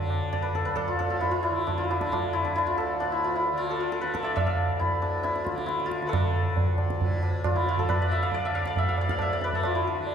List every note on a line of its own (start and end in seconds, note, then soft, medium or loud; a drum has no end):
0.00 0.50 D2 medium
0.00 1.00 A2 medium
0.00 1.50 D3 medium
0.00 1.60 D4 medium
0.00 0.87 F4 medium
0.00 0.54 A4 loud
0.00 0.42 B4 medium
0.10 tabla na medium
0.33 2.79 D5 medium
0.33 tabla na medium
0.33 tabla ge medium
0.42 0.65 B4 medium
0.51 2.51 D2 medium
0.55 0.75 A4 medium
0.55 tabla te medium
0.65 3.40 B4 medium
0.65 tabla ge medium
0.76 0.99 A4 loud
0.76 tabla na medium
0.76 tabla ge medium
0.88 1.10 F4 medium
0.99 3.00 A2 medium
0.99 2.77 A4 loud
0.99 tabla te medium
1.10 1.27 F4 medium
1.21 1.37 E4 medium
1.21 tabla tin medium
1.21 tabla ge medium
1.31 1.49 F4 medium
1.43 1.84 E4 medium
1.43 tabla na medium
1.50 2.01 D3 medium
1.67 2.01 D4 medium
1.67 tabla tin medium
1.67 tabla ge medium
1.78 1.97 F4 medium
1.91 2.18 E4 medium
1.91 tabla na medium
2.01 3.53 D3 medium
2.01 2.44 D4 medium
2.01 tabla ke medium
2.12 2.39 F4 medium
2.12 tabla na medium
2.12 tabla ge medium
2.33 2.55 E4 loud
2.33 tabla te medium
2.45 3.00 D4 medium
2.45 tabla ge medium
2.51 4.52 D2 medium
2.56 2.73 E4 loud
2.56 tabla na medium
2.67 3.18 F4 medium
2.78 3.70 A4 medium
2.78 tabla na medium
3.00 5.02 A2 medium
3.00 5.02 D4 loud
3.00 tabla tin medium
3.12 3.30 E4 medium
3.24 3.41 F4 medium
3.35 3.64 E4 medium
3.47 tabla tin medium
3.53 4.02 D3 medium
3.58 3.80 F4 loud
3.70 3.91 A4 medium
3.70 tabla na medium
3.80 4.29 F4 medium
3.92 4.13 A4 medium
3.92 tabla te medium
4.01 5.52 D3 medium
4.01 6.07 B4 loud
4.01 tabla te medium
4.14 6.08 A4 loud
4.14 tabla ke medium
4.23 6.71 D5 loud
4.23 4.35 E5 medium
4.27 tabla te medium
4.36 4.52 E5 loud
4.36 tabla na medium
4.36 tabla ge medium
4.46 4.85 F5 medium
4.52 6.51 D2 medium
4.79 5.23 E4 medium
4.79 tabla tin medium
4.79 tabla ge medium
5.02 7.02 A2 medium
5.02 8.75 D4 medium
5.23 5.50 E4 medium
5.23 tabla te medium
5.36 tabla te medium
5.44 5.72 F4 medium
5.44 tabla ke medium
5.52 6.01 D3 medium
5.58 tabla te medium
5.66 5.92 E4 medium
5.66 tabla te medium
5.80 tabla te medium
5.86 7.45 F4 medium
5.91 tabla ke medium
6.01 7.50 D3 medium
6.01 tabla te medium
6.07 7.79 A4 loud
6.07 7.89 B4 medium
6.13 tabla na loud
6.13 tabla ge loud
6.51 8.50 D2 medium
6.57 tabla tin medium
6.57 tabla ge medium
6.78 tabla na medium
6.90 tabla ke medium
7.01 8.99 A2 medium
7.01 tabla tin medium
7.01 tabla ge medium
7.23 tabla na medium
7.44 7.62 F4 medium
7.44 tabla na medium
7.44 tabla ge medium
7.50 8.01 D3 medium
7.56 7.74 E4 medium
7.66 8.18 F4 loud
7.66 tabla te medium
7.77 9.55 A4 medium
7.77 tabla ge medium
7.89 9.44 B4 loud
7.89 tabla na medium
7.89 tabla ge medium
8.01 9.49 D3 medium
8.01 8.34 D5 loud
8.12 8.29 E5 loud
8.23 8.51 F5 loud
8.32 8.67 D5 loud
8.32 tabla tin medium
8.32 tabla ge medium
8.45 8.61 E5 loud
8.50 10.15 D2 medium
8.55 8.84 F5 loud
8.55 tabla na medium
8.66 9.01 D5 loud
8.66 tabla ke medium
8.76 8.95 E5 loud
8.76 tabla tin medium
8.76 tabla ge medium
8.89 9.10 F5 loud
8.98 10.15 A2 medium
8.98 9.33 D5 loud
8.98 tabla na medium
9.09 9.28 F5 loud
9.09 tabla ke medium
9.19 9.71 E5 loud
9.19 tabla na medium
9.19 tabla ge medium
9.33 10.15 D5 loud
9.41 10.15 B4 loud
9.41 tabla te medium
9.49 9.98 D3 medium
9.49 tabla ge medium
9.55 10.15 A4 medium
9.63 9.81 F4 medium
9.63 tabla na medium
9.75 10.15 E4 medium
9.87 10.15 D4 medium
9.98 10.15 D3 medium
10.07 tabla tin medium